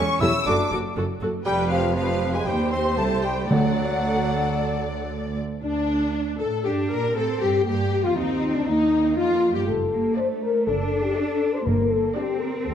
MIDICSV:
0, 0, Header, 1, 10, 480
1, 0, Start_track
1, 0, Tempo, 500835
1, 1395, Time_signature, 4, 2, 24, 8
1, 2364, Tempo, 525855
1, 5244, Tempo, 509771
1, 7644, Tempo, 498339
1, 12045, End_track
2, 0, Start_track
2, 0, Title_t, "Flute"
2, 0, Program_c, 0, 73
2, 0, Note_on_c, 0, 85, 106
2, 196, Note_on_c, 0, 88, 88
2, 211, Note_off_c, 0, 85, 0
2, 429, Note_off_c, 0, 88, 0
2, 435, Note_on_c, 0, 86, 77
2, 673, Note_off_c, 0, 86, 0
2, 1395, Note_on_c, 0, 79, 80
2, 1453, Note_off_c, 0, 79, 0
2, 1640, Note_on_c, 0, 77, 75
2, 1871, Note_off_c, 0, 77, 0
2, 1877, Note_on_c, 0, 77, 73
2, 2234, Note_off_c, 0, 77, 0
2, 2244, Note_on_c, 0, 80, 61
2, 2298, Note_off_c, 0, 80, 0
2, 2366, Note_on_c, 0, 79, 60
2, 2594, Note_off_c, 0, 79, 0
2, 2599, Note_on_c, 0, 84, 77
2, 2824, Note_off_c, 0, 84, 0
2, 2830, Note_on_c, 0, 81, 68
2, 2884, Note_off_c, 0, 81, 0
2, 3079, Note_on_c, 0, 79, 55
2, 3314, Note_on_c, 0, 78, 71
2, 3328, Note_off_c, 0, 79, 0
2, 4766, Note_off_c, 0, 78, 0
2, 12045, End_track
3, 0, Start_track
3, 0, Title_t, "Violin section"
3, 0, Program_c, 1, 48
3, 0, Note_on_c, 1, 85, 97
3, 190, Note_off_c, 1, 85, 0
3, 199, Note_on_c, 1, 88, 90
3, 435, Note_off_c, 1, 88, 0
3, 448, Note_on_c, 1, 86, 86
3, 684, Note_off_c, 1, 86, 0
3, 1391, Note_on_c, 1, 79, 85
3, 1615, Note_off_c, 1, 79, 0
3, 1628, Note_on_c, 1, 77, 80
3, 1861, Note_off_c, 1, 77, 0
3, 1873, Note_on_c, 1, 77, 78
3, 2232, Note_off_c, 1, 77, 0
3, 2238, Note_on_c, 1, 80, 61
3, 2359, Note_off_c, 1, 80, 0
3, 2363, Note_on_c, 1, 79, 67
3, 2587, Note_on_c, 1, 84, 68
3, 2597, Note_off_c, 1, 79, 0
3, 2660, Note_off_c, 1, 84, 0
3, 2826, Note_on_c, 1, 81, 67
3, 3062, Note_off_c, 1, 81, 0
3, 3065, Note_on_c, 1, 79, 57
3, 3307, Note_on_c, 1, 78, 61
3, 3309, Note_off_c, 1, 79, 0
3, 4733, Note_off_c, 1, 78, 0
3, 5251, Note_on_c, 1, 62, 73
3, 5930, Note_off_c, 1, 62, 0
3, 5967, Note_on_c, 1, 69, 65
3, 6202, Note_off_c, 1, 69, 0
3, 6210, Note_on_c, 1, 67, 62
3, 6285, Note_off_c, 1, 67, 0
3, 6460, Note_on_c, 1, 70, 73
3, 6686, Note_off_c, 1, 70, 0
3, 6693, Note_on_c, 1, 69, 73
3, 6921, Note_off_c, 1, 69, 0
3, 6924, Note_on_c, 1, 67, 71
3, 7157, Note_off_c, 1, 67, 0
3, 7168, Note_on_c, 1, 67, 70
3, 7519, Note_off_c, 1, 67, 0
3, 7519, Note_on_c, 1, 65, 60
3, 7641, Note_off_c, 1, 65, 0
3, 7644, Note_on_c, 1, 63, 70
3, 8002, Note_off_c, 1, 63, 0
3, 8012, Note_on_c, 1, 62, 62
3, 8126, Note_on_c, 1, 63, 72
3, 8130, Note_off_c, 1, 62, 0
3, 8605, Note_off_c, 1, 63, 0
3, 8607, Note_on_c, 1, 65, 70
3, 8960, Note_on_c, 1, 67, 50
3, 8961, Note_off_c, 1, 65, 0
3, 9082, Note_off_c, 1, 67, 0
3, 9568, Note_on_c, 1, 74, 63
3, 9928, Note_off_c, 1, 74, 0
3, 10525, Note_on_c, 1, 74, 61
3, 10882, Note_off_c, 1, 74, 0
3, 11492, Note_on_c, 1, 74, 66
3, 11843, Note_off_c, 1, 74, 0
3, 12045, End_track
4, 0, Start_track
4, 0, Title_t, "Violin section"
4, 0, Program_c, 2, 48
4, 0, Note_on_c, 2, 85, 99
4, 187, Note_off_c, 2, 85, 0
4, 207, Note_on_c, 2, 88, 85
4, 439, Note_off_c, 2, 88, 0
4, 440, Note_on_c, 2, 86, 85
4, 680, Note_off_c, 2, 86, 0
4, 1397, Note_on_c, 2, 79, 80
4, 1474, Note_off_c, 2, 79, 0
4, 1634, Note_on_c, 2, 77, 68
4, 1870, Note_off_c, 2, 77, 0
4, 1882, Note_on_c, 2, 77, 73
4, 2236, Note_off_c, 2, 77, 0
4, 2237, Note_on_c, 2, 80, 68
4, 2362, Note_off_c, 2, 80, 0
4, 2363, Note_on_c, 2, 79, 62
4, 2597, Note_off_c, 2, 79, 0
4, 2599, Note_on_c, 2, 84, 73
4, 2828, Note_off_c, 2, 84, 0
4, 2831, Note_on_c, 2, 81, 78
4, 3069, Note_off_c, 2, 81, 0
4, 3071, Note_on_c, 2, 79, 60
4, 3312, Note_off_c, 2, 79, 0
4, 3312, Note_on_c, 2, 78, 67
4, 4765, Note_off_c, 2, 78, 0
4, 5250, Note_on_c, 2, 62, 74
4, 5929, Note_off_c, 2, 62, 0
4, 5967, Note_on_c, 2, 69, 68
4, 6042, Note_off_c, 2, 69, 0
4, 6205, Note_on_c, 2, 67, 56
4, 6280, Note_off_c, 2, 67, 0
4, 6443, Note_on_c, 2, 70, 68
4, 6677, Note_off_c, 2, 70, 0
4, 6677, Note_on_c, 2, 69, 71
4, 6913, Note_off_c, 2, 69, 0
4, 6922, Note_on_c, 2, 67, 63
4, 7152, Note_off_c, 2, 67, 0
4, 7163, Note_on_c, 2, 67, 71
4, 7517, Note_off_c, 2, 67, 0
4, 7520, Note_on_c, 2, 65, 65
4, 7639, Note_off_c, 2, 65, 0
4, 7641, Note_on_c, 2, 63, 65
4, 8008, Note_off_c, 2, 63, 0
4, 8008, Note_on_c, 2, 62, 60
4, 8123, Note_on_c, 2, 63, 65
4, 8128, Note_off_c, 2, 62, 0
4, 8594, Note_off_c, 2, 63, 0
4, 8603, Note_on_c, 2, 65, 74
4, 8959, Note_off_c, 2, 65, 0
4, 8966, Note_on_c, 2, 67, 51
4, 9014, Note_off_c, 2, 67, 0
4, 9563, Note_on_c, 2, 74, 61
4, 9924, Note_off_c, 2, 74, 0
4, 10526, Note_on_c, 2, 74, 62
4, 10883, Note_off_c, 2, 74, 0
4, 11492, Note_on_c, 2, 74, 61
4, 11843, Note_off_c, 2, 74, 0
4, 12045, End_track
5, 0, Start_track
5, 0, Title_t, "French horn section"
5, 0, Program_c, 3, 60
5, 438, Note_on_c, 3, 69, 80
5, 441, Note_on_c, 3, 66, 79
5, 607, Note_off_c, 3, 69, 0
5, 608, Note_off_c, 3, 66, 0
5, 1397, Note_on_c, 3, 71, 72
5, 1400, Note_on_c, 3, 67, 74
5, 1563, Note_off_c, 3, 71, 0
5, 1565, Note_off_c, 3, 67, 0
5, 2365, Note_on_c, 3, 67, 65
5, 2369, Note_on_c, 3, 72, 68
5, 2527, Note_off_c, 3, 67, 0
5, 2530, Note_off_c, 3, 72, 0
5, 3314, Note_on_c, 3, 74, 57
5, 3316, Note_on_c, 3, 69, 53
5, 3483, Note_off_c, 3, 74, 0
5, 3484, Note_off_c, 3, 69, 0
5, 4283, Note_on_c, 3, 69, 55
5, 4285, Note_on_c, 3, 74, 54
5, 4451, Note_off_c, 3, 69, 0
5, 4452, Note_off_c, 3, 74, 0
5, 5249, Note_on_c, 3, 62, 77
5, 5928, Note_off_c, 3, 62, 0
5, 5966, Note_on_c, 3, 69, 68
5, 6074, Note_off_c, 3, 69, 0
5, 6200, Note_on_c, 3, 67, 69
5, 6309, Note_off_c, 3, 67, 0
5, 6441, Note_on_c, 3, 70, 77
5, 6676, Note_off_c, 3, 70, 0
5, 6684, Note_on_c, 3, 69, 75
5, 6791, Note_off_c, 3, 69, 0
5, 6918, Note_on_c, 3, 67, 69
5, 7145, Note_off_c, 3, 67, 0
5, 7157, Note_on_c, 3, 67, 80
5, 7513, Note_off_c, 3, 67, 0
5, 7521, Note_on_c, 3, 65, 67
5, 7630, Note_on_c, 3, 63, 75
5, 7642, Note_off_c, 3, 65, 0
5, 8002, Note_off_c, 3, 63, 0
5, 8005, Note_on_c, 3, 62, 70
5, 8123, Note_on_c, 3, 63, 80
5, 8127, Note_off_c, 3, 62, 0
5, 8594, Note_off_c, 3, 63, 0
5, 8607, Note_on_c, 3, 65, 75
5, 8961, Note_off_c, 3, 65, 0
5, 8969, Note_on_c, 3, 67, 70
5, 9084, Note_on_c, 3, 69, 84
5, 9089, Note_off_c, 3, 67, 0
5, 9565, Note_on_c, 3, 72, 76
5, 9567, Note_off_c, 3, 69, 0
5, 9675, Note_off_c, 3, 72, 0
5, 9815, Note_on_c, 3, 70, 78
5, 10047, Note_on_c, 3, 69, 88
5, 10048, Note_off_c, 3, 70, 0
5, 10400, Note_off_c, 3, 69, 0
5, 10412, Note_on_c, 3, 67, 77
5, 10523, Note_on_c, 3, 69, 79
5, 10530, Note_off_c, 3, 67, 0
5, 10884, Note_off_c, 3, 69, 0
5, 10888, Note_on_c, 3, 72, 87
5, 11003, Note_on_c, 3, 70, 74
5, 11007, Note_off_c, 3, 72, 0
5, 11245, Note_off_c, 3, 70, 0
5, 11245, Note_on_c, 3, 69, 84
5, 11485, Note_off_c, 3, 69, 0
5, 11490, Note_on_c, 3, 67, 84
5, 11719, Note_on_c, 3, 70, 76
5, 11721, Note_off_c, 3, 67, 0
5, 11955, Note_on_c, 3, 69, 88
5, 11960, Note_off_c, 3, 70, 0
5, 12045, Note_off_c, 3, 69, 0
5, 12045, End_track
6, 0, Start_track
6, 0, Title_t, "Viola section"
6, 0, Program_c, 4, 48
6, 206, Note_on_c, 4, 67, 69
6, 207, Note_on_c, 4, 69, 67
6, 282, Note_off_c, 4, 67, 0
6, 284, Note_off_c, 4, 69, 0
6, 442, Note_on_c, 4, 66, 72
6, 442, Note_on_c, 4, 69, 72
6, 519, Note_off_c, 4, 66, 0
6, 519, Note_off_c, 4, 69, 0
6, 684, Note_on_c, 4, 66, 70
6, 685, Note_on_c, 4, 69, 65
6, 760, Note_off_c, 4, 66, 0
6, 762, Note_off_c, 4, 69, 0
6, 924, Note_on_c, 4, 66, 68
6, 925, Note_on_c, 4, 69, 67
6, 1001, Note_off_c, 4, 66, 0
6, 1002, Note_off_c, 4, 69, 0
6, 1161, Note_on_c, 4, 69, 62
6, 1162, Note_on_c, 4, 66, 60
6, 1238, Note_off_c, 4, 69, 0
6, 1239, Note_off_c, 4, 66, 0
6, 1397, Note_on_c, 4, 71, 64
6, 1399, Note_on_c, 4, 67, 65
6, 1842, Note_off_c, 4, 71, 0
6, 1844, Note_off_c, 4, 67, 0
6, 1875, Note_on_c, 4, 67, 62
6, 1879, Note_on_c, 4, 71, 61
6, 2353, Note_off_c, 4, 67, 0
6, 2355, Note_off_c, 4, 71, 0
6, 2374, Note_on_c, 4, 72, 59
6, 2375, Note_on_c, 4, 67, 61
6, 3298, Note_off_c, 4, 67, 0
6, 3314, Note_on_c, 4, 74, 55
6, 3316, Note_off_c, 4, 72, 0
6, 3316, Note_on_c, 4, 69, 56
6, 5023, Note_off_c, 4, 74, 0
6, 5059, Note_off_c, 4, 69, 0
6, 5256, Note_on_c, 4, 62, 71
6, 5932, Note_off_c, 4, 62, 0
6, 5969, Note_on_c, 4, 69, 67
6, 6207, Note_off_c, 4, 69, 0
6, 6215, Note_on_c, 4, 67, 61
6, 6450, Note_off_c, 4, 67, 0
6, 6454, Note_on_c, 4, 70, 70
6, 6687, Note_off_c, 4, 70, 0
6, 6694, Note_on_c, 4, 69, 67
6, 6926, Note_off_c, 4, 69, 0
6, 6927, Note_on_c, 4, 67, 62
6, 7003, Note_off_c, 4, 67, 0
6, 7166, Note_on_c, 4, 67, 71
6, 7518, Note_off_c, 4, 67, 0
6, 7529, Note_on_c, 4, 65, 62
6, 7646, Note_off_c, 4, 65, 0
6, 7654, Note_on_c, 4, 63, 64
6, 8012, Note_on_c, 4, 62, 57
6, 8014, Note_off_c, 4, 63, 0
6, 8130, Note_off_c, 4, 62, 0
6, 8141, Note_on_c, 4, 63, 62
6, 8603, Note_off_c, 4, 63, 0
6, 8613, Note_on_c, 4, 65, 74
6, 8964, Note_off_c, 4, 65, 0
6, 8970, Note_on_c, 4, 67, 59
6, 9087, Note_off_c, 4, 67, 0
6, 9580, Note_on_c, 4, 62, 58
6, 9934, Note_off_c, 4, 62, 0
6, 10531, Note_on_c, 4, 62, 61
6, 10886, Note_off_c, 4, 62, 0
6, 11491, Note_on_c, 4, 62, 63
6, 11843, Note_off_c, 4, 62, 0
6, 12045, End_track
7, 0, Start_track
7, 0, Title_t, "Cello section"
7, 0, Program_c, 5, 48
7, 207, Note_on_c, 5, 40, 78
7, 283, Note_off_c, 5, 40, 0
7, 443, Note_on_c, 5, 42, 76
7, 520, Note_off_c, 5, 42, 0
7, 679, Note_on_c, 5, 42, 74
7, 755, Note_off_c, 5, 42, 0
7, 919, Note_on_c, 5, 42, 72
7, 996, Note_off_c, 5, 42, 0
7, 1160, Note_on_c, 5, 42, 67
7, 1237, Note_off_c, 5, 42, 0
7, 1399, Note_on_c, 5, 41, 74
7, 2327, Note_off_c, 5, 41, 0
7, 2368, Note_on_c, 5, 39, 65
7, 2835, Note_off_c, 5, 39, 0
7, 2836, Note_on_c, 5, 36, 58
7, 3313, Note_off_c, 5, 36, 0
7, 3314, Note_on_c, 5, 38, 59
7, 5023, Note_off_c, 5, 38, 0
7, 6209, Note_on_c, 5, 62, 65
7, 6652, Note_off_c, 5, 62, 0
7, 6688, Note_on_c, 5, 60, 57
7, 7161, Note_on_c, 5, 58, 57
7, 7163, Note_off_c, 5, 60, 0
7, 7634, Note_off_c, 5, 58, 0
7, 7643, Note_on_c, 5, 60, 64
7, 8119, Note_off_c, 5, 60, 0
7, 8130, Note_on_c, 5, 58, 63
7, 9086, Note_on_c, 5, 57, 58
7, 9089, Note_off_c, 5, 58, 0
7, 9163, Note_off_c, 5, 57, 0
7, 9325, Note_on_c, 5, 58, 60
7, 9563, Note_off_c, 5, 58, 0
7, 9568, Note_on_c, 5, 57, 61
7, 10046, Note_on_c, 5, 62, 72
7, 10050, Note_off_c, 5, 57, 0
7, 11004, Note_off_c, 5, 62, 0
7, 11006, Note_on_c, 5, 58, 59
7, 11476, Note_off_c, 5, 58, 0
7, 11483, Note_on_c, 5, 60, 64
7, 12045, Note_off_c, 5, 60, 0
7, 12045, End_track
8, 0, Start_track
8, 0, Title_t, "Bassoon"
8, 0, Program_c, 6, 70
8, 0, Note_on_c, 6, 61, 127
8, 188, Note_off_c, 6, 61, 0
8, 200, Note_on_c, 6, 64, 93
8, 308, Note_off_c, 6, 64, 0
8, 442, Note_on_c, 6, 62, 98
8, 677, Note_off_c, 6, 62, 0
8, 1396, Note_on_c, 6, 55, 104
8, 1642, Note_on_c, 6, 53, 89
8, 1656, Note_off_c, 6, 55, 0
8, 1870, Note_off_c, 6, 53, 0
8, 1875, Note_on_c, 6, 53, 86
8, 2244, Note_on_c, 6, 56, 79
8, 2258, Note_off_c, 6, 53, 0
8, 2365, Note_on_c, 6, 55, 70
8, 2379, Note_off_c, 6, 56, 0
8, 2592, Note_off_c, 6, 55, 0
8, 2597, Note_on_c, 6, 60, 88
8, 2830, Note_on_c, 6, 57, 92
8, 2843, Note_off_c, 6, 60, 0
8, 3068, Note_on_c, 6, 55, 70
8, 3081, Note_off_c, 6, 57, 0
8, 3307, Note_on_c, 6, 54, 80
8, 3321, Note_off_c, 6, 55, 0
8, 4762, Note_off_c, 6, 54, 0
8, 12045, End_track
9, 0, Start_track
9, 0, Title_t, "Timpani"
9, 0, Program_c, 7, 47
9, 3312, Note_on_c, 7, 50, 87
9, 4007, Note_off_c, 7, 50, 0
9, 11008, Note_on_c, 7, 43, 64
9, 11686, Note_off_c, 7, 43, 0
9, 12045, End_track
10, 0, Start_track
10, 0, Title_t, "Double bass section"
10, 0, Program_c, 8, 48
10, 201, Note_on_c, 8, 28, 78
10, 278, Note_off_c, 8, 28, 0
10, 443, Note_on_c, 8, 30, 82
10, 520, Note_off_c, 8, 30, 0
10, 683, Note_on_c, 8, 30, 75
10, 760, Note_off_c, 8, 30, 0
10, 926, Note_on_c, 8, 30, 74
10, 1003, Note_off_c, 8, 30, 0
10, 1160, Note_on_c, 8, 30, 73
10, 1237, Note_off_c, 8, 30, 0
10, 1398, Note_on_c, 8, 29, 79
10, 2326, Note_off_c, 8, 29, 0
10, 2368, Note_on_c, 8, 39, 65
10, 2835, Note_off_c, 8, 39, 0
10, 2840, Note_on_c, 8, 36, 59
10, 3315, Note_off_c, 8, 36, 0
10, 3319, Note_on_c, 8, 38, 59
10, 5025, Note_off_c, 8, 38, 0
10, 5245, Note_on_c, 8, 38, 73
10, 5926, Note_off_c, 8, 38, 0
10, 5970, Note_on_c, 8, 45, 64
10, 6208, Note_off_c, 8, 45, 0
10, 6208, Note_on_c, 8, 43, 56
10, 6447, Note_off_c, 8, 43, 0
10, 6450, Note_on_c, 8, 46, 69
10, 6681, Note_off_c, 8, 46, 0
10, 6687, Note_on_c, 8, 45, 70
10, 6762, Note_off_c, 8, 45, 0
10, 6921, Note_on_c, 8, 43, 73
10, 7149, Note_off_c, 8, 43, 0
10, 7160, Note_on_c, 8, 43, 69
10, 7515, Note_off_c, 8, 43, 0
10, 7524, Note_on_c, 8, 41, 59
10, 7571, Note_off_c, 8, 41, 0
10, 7641, Note_on_c, 8, 39, 64
10, 8000, Note_off_c, 8, 39, 0
10, 8007, Note_on_c, 8, 38, 62
10, 8128, Note_off_c, 8, 38, 0
10, 8130, Note_on_c, 8, 39, 68
10, 8597, Note_off_c, 8, 39, 0
10, 8608, Note_on_c, 8, 41, 72
10, 8968, Note_on_c, 8, 43, 61
10, 8969, Note_off_c, 8, 41, 0
10, 9086, Note_on_c, 8, 30, 70
10, 9088, Note_off_c, 8, 43, 0
10, 9467, Note_off_c, 8, 30, 0
10, 10055, Note_on_c, 8, 30, 74
10, 10430, Note_off_c, 8, 30, 0
10, 11007, Note_on_c, 8, 31, 76
10, 11386, Note_off_c, 8, 31, 0
10, 11964, Note_on_c, 8, 38, 72
10, 12045, Note_off_c, 8, 38, 0
10, 12045, End_track
0, 0, End_of_file